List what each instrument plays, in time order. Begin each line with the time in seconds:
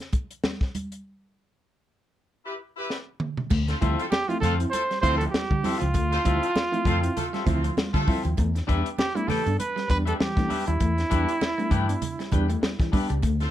0.00 snare, closed hi-hat
0.13 kick, closed hi-hat, muted conga
0.31 closed hi-hat
0.44 snare, high conga
0.61 kick, snare
0.75 closed hi-hat, high conga
0.92 closed hi-hat
2.45 horn section E4 G4 B4
2.76 horn section E4 G4 B4
2.90 snare
3.20 mid tom
3.37 floor tom
3.50 fingered electric bass D2, reed electric piano D3, clean electric guitar A3, kick, crash, muted conga
3.68 reed electric piano C4 E4, horn section F4 A4 C5, muted clean electric guitar stroke, snare, closed hi-hat
3.81 fingered electric bass D2, reed electric piano F3 C4 E4, clean electric guitar G3 C4 F4 A4 E5, kick, closed hi-hat
3.99 horn section A3 F4 A4, closed hi-hat
4.12 trumpet G4, muted clean electric guitar stroke, snare, high conga
4.28 reed electric piano F3 C4 E4, clean electric guitar A3, trumpet F4, muted clean electric guitar stroke, closed hi-hat
4.40 fingered electric bass F2, reed electric piano D3, clean electric guitar A3 C4 F4 A4 F5, horn section F4 A4 C5, trumpet A4, snare, closed hi-hat, low conga
4.59 reed electric piano F3 C4 E4, muted clean electric guitar stroke, closed hi-hat
4.70 horn section A3 F4 A4, trumpet C5, muted clean electric guitar stroke, closed hi-hat, muted conga
4.89 clean electric guitar G3, muted clean electric guitar stroke, snare, closed hi-hat
5.02 fingered electric bass D2, reed electric piano F3 C4 E4, horn section A3 C4 F4, clean electric guitar C4 F4 A4 F5, trumpet C5, kick, closed hi-hat, muted conga
5.18 clean electric guitar F3, trumpet A4, muted clean electric guitar stroke, closed hi-hat
5.30 reed electric piano C4 E4, trumpet G4, muted clean electric guitar stroke, snare, high conga
5.50 reed electric piano D3, fingered electric bass D3, clean electric guitar G3, muted clean electric guitar stroke, kick, high conga
5.64 reed electric piano F3 C4 E4, clean electric guitar C4 F4 A4 E5, muted clean electric guitar stroke, open hi-hat, high conga
5.78 fingered electric bass C#2, clean electric guitar F3, trumpet F4, muted clean electric guitar stroke, closed hi-hat
5.94 fingered electric bass D2, reed electric piano D3, clean electric guitar A3, kick, closed hi-hat, muted conga
6.11 reed electric piano C4 E4, horn section F4 A4 C5, muted clean electric guitar stroke, snare, closed hi-hat
6.24 fingered electric bass D2, reed electric piano F3 C4 E4, clean electric guitar G3 C4 F4 A4 E5, kick, closed hi-hat
6.43 horn section A3 F4 A4, closed hi-hat
6.56 muted clean electric guitar stroke, snare, high conga
6.72 reed electric piano F3 C4 E4, clean electric guitar A3, muted clean electric guitar stroke, closed hi-hat
6.85 fingered electric bass F2, reed electric piano D3, clean electric guitar A3 C4 F4 A4 F5, horn section F4 A4 C5, kick, closed hi-hat, low conga
7.03 reed electric piano F3 C4 E4, muted clean electric guitar stroke, closed hi-hat
7.16 horn section A3 F4 A4, muted clean electric guitar stroke, closed hi-hat, muted conga, low conga
7.33 clean electric guitar G3 C4 F4 A4 E5, snare, closed hi-hat
7.46 fingered electric bass D2, reed electric piano F3 C4 E4, horn section A3 C4 F4, muted clean electric guitar stroke, kick, closed hi-hat, muted conga, low conga
7.64 clean electric guitar F3, muted clean electric guitar stroke, closed hi-hat
7.77 reed electric piano C4 E4, muted clean electric guitar stroke, snare, high conga
7.93 reed electric piano D3, fingered electric bass D3, clean electric guitar G3, horn section A3 F4 A4, muted clean electric guitar stroke, kick, snare, closed hi-hat, high conga
8.07 reed electric piano F3 C4 E4, clean electric guitar C4 F4 A4 E5, muted clean electric guitar stroke, kick, open hi-hat, high conga
8.24 fingered electric bass D#2, clean electric guitar F3, muted clean electric guitar stroke, closed hi-hat
8.37 fingered electric bass E2, reed electric piano E3, clean electric guitar A3, kick, closed hi-hat, muted conga
8.55 reed electric piano B3 D4, muted clean electric guitar stroke, snare, closed hi-hat
8.67 fingered electric bass E2, reed electric piano G3 B3 D4, clean electric guitar G3 D4 G4 B4 E5, kick, closed hi-hat, muted conga
8.86 closed hi-hat
8.98 trumpet G4, muted clean electric guitar stroke, snare, high conga
9.15 reed electric piano G3 B3 D4, clean electric guitar A3, trumpet E4, muted clean electric guitar stroke, closed hi-hat
9.28 reed electric piano E3, clean electric guitar A3 D4 G4 B4 G5, trumpet A4, muted fingered electric bass stroke, snare, open hi-hat, low conga
9.45 fingered electric bass G2, reed electric piano G3 B3 D4, muted clean electric guitar stroke, closed hi-hat
9.58 trumpet B4, muted clean electric guitar stroke, closed hi-hat, muted conga
9.76 clean electric guitar G3, muted clean electric guitar stroke, snare, closed hi-hat
9.89 fingered electric bass E2, reed electric piano G3 B3 D4, trumpet B4, muted clean electric guitar stroke, kick, closed hi-hat, muted conga
10.05 clean electric guitar G3 D4 G4 B4 E5, trumpet A4, closed hi-hat
10.19 reed electric piano E3, trumpet G4, muted clean electric guitar stroke, snare, high conga
10.36 fingered electric bass E3, reed electric piano G3 B3 D4, clean electric guitar A3, muted clean electric guitar stroke, kick, snare, closed hi-hat, high conga
10.49 reed electric piano B3 D4, clean electric guitar D4 G4 B4 E5, muted clean electric guitar stroke, open hi-hat, high conga
10.66 fingered electric bass D#2, clean electric guitar G3, trumpet E4, muted clean electric guitar stroke, closed hi-hat
10.80 fingered electric bass E2, reed electric piano E3, clean electric guitar A3, kick, closed hi-hat, muted conga
10.98 reed electric piano B3 D4, muted clean electric guitar stroke, snare, closed hi-hat
11.10 fingered electric bass E2, clean electric guitar G3 D4 G4 B4 E5, reed electric piano G3 B3 D4, kick, closed hi-hat, muted conga
11.28 closed hi-hat
11.41 muted clean electric guitar stroke, snare, high conga
11.58 reed electric piano G3 B3 D4, clean electric guitar A3, muted clean electric guitar stroke, closed hi-hat
11.71 fingered electric bass G2, reed electric piano E3, clean electric guitar A3 D4 G4 B4 G5, kick, closed hi-hat, low conga
11.88 reed electric piano G3 B3 D4, muted clean electric guitar stroke, closed hi-hat
12.01 muted clean electric guitar stroke, closed hi-hat, muted conga, low conga
12.19 clean electric guitar G3, snare, closed hi-hat
12.32 fingered electric bass E2, reed electric piano G3 B3 D4, clean electric guitar D4 G4 B4 G5, muted clean electric guitar stroke, kick, closed hi-hat, muted conga, low conga
12.49 clean electric guitar A3, muted clean electric guitar stroke, closed hi-hat
12.62 reed electric piano B3 D4, muted clean electric guitar stroke, snare, high conga
12.79 fingered electric bass E3, reed electric piano E3, clean electric guitar G3, muted clean electric guitar stroke, kick, snare, closed hi-hat, high conga
12.92 reed electric piano G3 B3 D4, clean electric guitar D4 G4 B4 E5, muted clean electric guitar stroke, kick, open hi-hat, high conga
13.09 fingered electric bass C#2, clean electric guitar G3, muted clean electric guitar stroke, closed hi-hat
13.22 fingered electric bass D2, reed electric piano D3, clean electric guitar A3, kick, closed hi-hat, muted conga
13.40 reed electric piano C4 E4, horn section F4 A4 C5, muted clean electric guitar stroke, snare, closed hi-hat